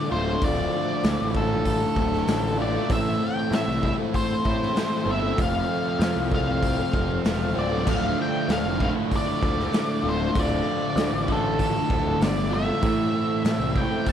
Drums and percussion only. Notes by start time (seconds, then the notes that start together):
0.41 kick, open hi-hat
1.03 snare, open hi-hat
1.35 kick
1.65 kick, open hi-hat
1.96 kick
2.13 snare
2.27 snare, open hi-hat
2.90 kick, open hi-hat
3.52 snare, open hi-hat
3.83 kick
4.14 kick, open hi-hat
4.45 kick
4.62 snare
4.76 snare, open hi-hat
5.38 kick, open hi-hat
6.00 snare, open hi-hat
6.32 kick
6.63 kick, open hi-hat
6.93 kick
7.25 snare, open hi-hat
7.87 kick, crash
8.49 snare, open hi-hat
8.80 kick
9.12 kick, open hi-hat
9.43 kick
9.59 snare
9.73 snare, open hi-hat
10.35 kick, open hi-hat
10.97 snare, open hi-hat
11.28 kick
11.59 kick, open hi-hat
11.90 kick
12.21 snare, open hi-hat
12.83 kick, open hi-hat
13.45 snare, open hi-hat
13.76 kick
14.06 kick, open hi-hat